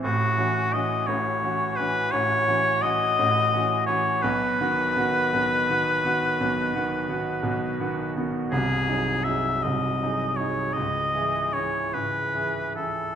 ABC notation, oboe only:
X:1
M:12/8
L:1/8
Q:3/8=56
K:Bmix
V:1 name="Oboe"
F2 d c2 B c2 d3 c | B8- B3 z | G2 e d2 c d2 c B2 A |]